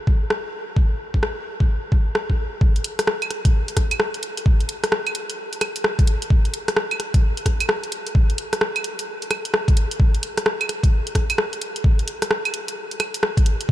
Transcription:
0.07 kick
0.30 cross-stick
0.77 kick
1.14 kick
1.23 cross-stick
1.60 kick
1.92 kick
2.15 cross-stick
2.30 kick
2.61 kick
2.76 closed hi-hat
2.84 closed hi-hat
2.99 cross-stick, closed hi-hat
3.07 cross-stick
3.22 closed hi-hat, claves
3.31 cross-stick, closed hi-hat
3.45 kick, closed hi-hat
3.68 closed hi-hat
3.77 kick, cross-stick, closed hi-hat
3.91 closed hi-hat, claves
4.00 cross-stick
4.14 closed hi-hat
4.23 closed hi-hat
4.37 closed hi-hat
4.46 kick
4.60 closed hi-hat
4.69 closed hi-hat
4.84 cross-stick, closed hi-hat
4.92 cross-stick
5.07 closed hi-hat, claves
5.15 closed hi-hat
5.30 closed hi-hat
5.53 closed hi-hat
5.61 cross-stick, closed hi-hat, claves
5.76 closed hi-hat
5.84 cross-stick
5.99 kick, closed hi-hat
6.07 closed hi-hat
6.22 closed hi-hat
6.30 kick
6.45 closed hi-hat
6.54 closed hi-hat
6.68 cross-stick, closed hi-hat
6.77 cross-stick
6.91 closed hi-hat, claves
7.00 cross-stick, closed hi-hat
7.14 kick, closed hi-hat
7.37 closed hi-hat
7.46 kick, cross-stick, closed hi-hat
7.60 closed hi-hat, claves
7.69 cross-stick
7.84 closed hi-hat
7.92 closed hi-hat
8.07 closed hi-hat
8.15 kick
8.30 closed hi-hat
8.38 closed hi-hat
8.53 cross-stick, closed hi-hat
8.61 cross-stick
8.76 closed hi-hat, claves
8.84 closed hi-hat
8.99 closed hi-hat
9.22 closed hi-hat
9.31 cross-stick, closed hi-hat, claves
9.45 closed hi-hat
9.54 cross-stick
9.68 kick, closed hi-hat
9.77 closed hi-hat
9.91 closed hi-hat
10.00 kick
10.14 closed hi-hat
10.23 closed hi-hat
10.38 cross-stick, closed hi-hat
10.46 cross-stick
10.61 closed hi-hat, claves
10.69 cross-stick, closed hi-hat
10.83 kick, closed hi-hat
11.07 closed hi-hat
11.15 kick, cross-stick, closed hi-hat
11.30 closed hi-hat, claves
11.38 cross-stick
11.53 closed hi-hat
11.62 closed hi-hat
11.76 closed hi-hat
11.84 kick
11.99 closed hi-hat
12.08 closed hi-hat
12.22 cross-stick, closed hi-hat
12.31 cross-stick
12.45 closed hi-hat, claves
12.54 closed hi-hat
12.68 closed hi-hat
12.91 closed hi-hat
13.00 cross-stick, closed hi-hat, claves
13.14 closed hi-hat
13.23 cross-stick
13.37 kick, closed hi-hat
13.46 closed hi-hat
13.61 closed hi-hat

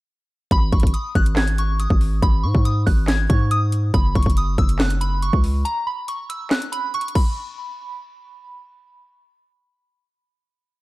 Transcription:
0.51 G#1 B5, kick, closed hi-hat
0.72 G#1 C#6, kick, closed hi-hat
0.80 kick, closed hi-hat
0.87 closed hi-hat
0.94 D#6, closed hi-hat
1.15 G#1 F#6, kick, closed hi-hat
1.26 closed hi-hat
1.36 G#6, snare, clap, closed hi-hat
1.48 closed hi-hat
1.58 C#6, closed hi-hat
1.80 D#6, closed hi-hat
1.90 G#1, kick
2.01 open hi-hat
2.22 G#1 B5, kick, closed hi-hat
2.43 G#2 C#6
2.55 G#2, kick
2.65 D#6, closed hi-hat
2.86 G#1 F#6, kick, open hi-hat
3.08 G#6, snare, clap, closed hi-hat
3.30 G#2 C#6, kick, closed hi-hat
3.51 D#6, closed hi-hat
3.72 closed hi-hat
3.94 F#1 B5, kick, closed hi-hat
4.15 F#1 C#6, kick, closed hi-hat
4.23 F#1, kick, closed hi-hat
4.30 closed hi-hat
4.37 D#6, closed hi-hat
4.58 F#1 E6, kick, closed hi-hat
4.69 closed hi-hat
4.79 F#6, snare, clap, closed hi-hat
4.90 closed hi-hat
5.01 B5, closed hi-hat
5.22 C#6, closed hi-hat
5.33 C#2, kick
5.44 open hi-hat
5.65 A#5, closed hi-hat
5.87 B5
6.08 C#6, closed hi-hat
6.30 E6, closed hi-hat
6.50 F#6, snare, clap, closed hi-hat
6.62 closed hi-hat
6.72 B5, closed hi-hat
6.94 C#6, closed hi-hat
7.01 closed hi-hat
7.08 closed hi-hat
7.15 B5, kick, crash

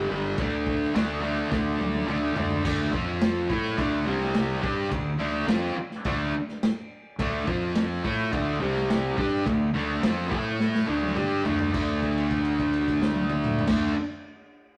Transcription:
0.09 G1 G2 D3 G3
0.38 D2 D3 A3 D4, kick, crash
0.67 kick
0.82 snare
0.94 D2 D3 A3 D4, snare, crash
1.21 D3 A3 D4
1.51 D2 D3 A3 D4, kick, snare
1.80 D2, high tom
1.95 high tom
2.06 D2 D3 A3 D4, mid tom
2.35 D2 D3 A3 D4, floor tom
2.50 floor tom
2.64 D2 D3 A3 D4, kick, crash
2.93 F2 F3 C4 F4, kick
3.21 snare, crash
3.49 A2 A3 E4 A4, kick
3.65 snare
3.77 D2 D3 A3 D4, kick, crash
4.06 C2 C3 G3 C4
4.21 snare
4.34 snare, crash
4.62 G2 G3 D4 G4, kick
4.89 D2 D3 A3, kick, crash
5.19 D2 D3 A3 D4
5.48 F2 F3 C4 F4, snare, crash
5.75 muted fingered electric bass stroke, muted distorted electric guitar stroke
5.91 snare
6.04 D2 D3 A3 D4, kick, crash
6.48 snare
6.63 snare, crash
7.18 D2 D3 A3 D4, kick, crash
7.47 F2 F3 C4 F4, kick
7.75 snare, crash
8.04 A2 A3 E4 A4, kick
8.31 D2 D3 A3 D4, kick, crash
8.59 C2 C3 G3 C4
8.75 snare
8.90 snare, crash
9.17 G2 G3 D4 G4, kick
9.45 D2 D3 A3, kick, crash
9.74 D2 D3 A3 D4
10.03 F2 F3 C4 F4, snare, crash
10.30 A2 A3 E4 A4, kick
10.60 snare
10.75 snare
10.86 D2 D3 A3 D4
11.03 high tom
11.15 G2 G3 D4 G4, mid tom
11.44 D2 D3 A3 D4, floor tom
11.59 floor tom
11.72 D2 D3 A3, kick, crash
11.76 D4
12.03 kick, crash
12.18 crash
12.31 kick, crash
12.45 crash
12.59 kick, crash
12.73 crash
12.88 kick, crash
13.02 snare
13.16 high tom
13.30 mid tom
13.44 mid tom
13.59 floor tom
13.66 D2 D3 A3, kick, snare, crash
13.70 D4

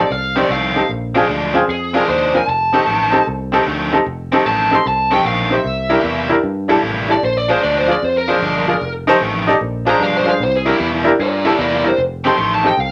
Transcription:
0.00 D5
0.10 C2 F5
0.35 F2 D#3 A3 C4 D#4 G4 C5 D5
0.49 C2 F2 D#3 A3 C4 F5
0.75 C4 D#4 G4 A4
0.89 A#1
1.14 A#2 F3 G#3 C4 D4 F4 G#4
1.28 D2 A#2 F3 G#3 D4
1.54 C4 D4 F4 G#4
1.68 F2 G#4
1.93 A#2 F3 G#3 C4 D4 F4 G#4 A#4
2.07 D#2 A#2 F3 G#3 D4 C5
2.33 C4 D4 F4 A#4 G#5
2.47 F1 A5
2.73 F2 D#3 A3 C4 D#4 G4 A4
2.86 A1 F2 D#3 A3 C4
3.11 C4 D#4 G4 A4
3.27 C2
3.52 F2 D#3 A3 C4 D#4 G4 A4
3.66 D2 F2 D#3 A3 C4
3.91 C4 D#4 G4 A4
4.06 F1
4.32 F2 D#3 A3 C4 D#4 G4 A4
4.45 A1 F2 D#3 A3 C4 A5
4.71 C4 D#4 G4 A4 C6
4.86 C2 A5
5.10 F2 D#3 A3 C4 D#4 G4 A4 G5
5.24 A#1 F2 D#3 A3 C4 F5
5.50 C4 D#4 G4 C5
5.54 E5
5.64 C2
5.89 C3 G3 A#3 D4 E4 G4 A#4
6.03 E2 C3 G3 A#3 E4
6.29 D4 E4 G4 A#4
6.43 G2
6.68 C3 G3 A#3 D4 E4 G4 A4
6.83 A1 C3 G3 A#3 E4
7.08 D4 E4 G4 A4 D5
7.23 A#1 C5
7.37 D5
7.48 A#2 F3 G#3 D4 F4 G#4 C5
7.62 D2 A#2 F3 G#3 D4 D5
7.78 C5
7.87 D4 F4 G#4 D5
7.92 D5
8.02 F2 C5
8.17 A#4
8.28 A#2 F3 G#3 D4 F4 G#4 C5
8.41 G1 A#2 F3 G#3 D4
8.67 D4 F4 G#4 D5
8.81 F1
9.07 F2 D#3 A3 C4 D#4 G4 A4 C5
9.21 A1 F2 D#3 A3 C4
9.47 D#4 G4 A4 D5
9.61 A#1
9.85 A#2 F3 G#3 D4 F4 G#4 C5
9.90 A#5
10.00 G2 A#2 F3 G#3 D4 F5
10.17 C5
10.25 D4 F4 G#4 C5
10.29 F5
10.40 C2 C5
10.56 G#4
10.65 C3 G3 A#3 D4 E4 G4 A#4
10.70 E4
10.79 E2 C3 G3 A#3 E4
11.04 D4 E4 G4 A#4
11.19 G2 A#4 D5
11.44 C3 G3 A#3 D4 E4 G4 A4
11.49 A#4 D5
11.58 E2 C3 G3 A#3 E4 A#4
11.62 D5
11.84 D4 E4 G4 A#4
11.88 C5
11.98 F1
12.24 F2 D#3 A3 C4 D#4 G4 A4 C6
12.37 A1 F2 D#3 A3 C4
12.55 A5
12.64 C4 D#4 G4 A4 G5
12.77 C2 F5

